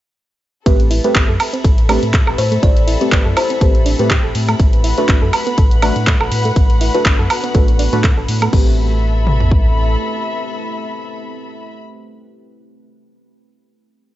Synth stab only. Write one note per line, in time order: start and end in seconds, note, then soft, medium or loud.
0.66 0.99 A3 loud
0.66 0.99 C4 medium
0.66 0.99 G4 medium
0.66 0.99 B4 loud
1.04 1.14 A3 medium
1.04 1.14 C4 medium
1.04 1.14 G4 medium
1.04 1.14 B4 loud
1.89 2.01 A3 medium
1.89 2.01 C4 medium
1.89 2.01 G4 medium
1.89 2.01 B4 medium
3.01 3.10 A3 medium
3.01 3.10 C4 medium
3.01 3.10 G4 medium
3.01 3.10 B4 medium
3.12 3.24 A3 medium
3.12 3.24 C4 medium
3.12 3.24 G4 medium
3.12 3.24 B4 medium
3.61 3.73 A3 medium
3.61 3.73 C4 medium
3.61 3.73 G4 medium
3.61 3.73 B4 medium
3.99 4.09 A3 medium
3.99 4.09 C4 medium
3.99 4.09 G4 medium
3.99 4.09 B4 medium
4.98 5.07 A3 medium
4.98 5.07 D4 medium
4.98 5.07 F#4 medium
4.98 5.07 B4 loud
5.09 5.20 A3 medium
5.09 5.20 D4 medium
5.09 5.21 F#4 medium
5.09 5.21 B4 medium
5.82 5.94 A3 medium
5.82 5.94 D4 medium
5.82 5.94 F#4 medium
5.82 5.94 B4 loud
6.94 7.04 A3 medium
6.94 7.04 D4 medium
6.94 7.04 F#4 medium
6.94 7.04 B4 medium
7.05 7.17 A3 medium
7.05 7.17 D4 medium
7.05 7.17 F#4 medium
7.55 7.66 A3 medium
7.55 7.66 D4 medium
7.55 7.66 F#4 medium
7.55 7.66 B4 medium
7.93 8.02 A3 medium
7.93 8.02 D4 medium
7.93 8.02 F#4 medium
7.93 8.02 B4 loud
8.53 11.63 A3 medium
8.53 11.63 C4 medium
8.53 11.63 G4 medium
8.53 11.63 B4 medium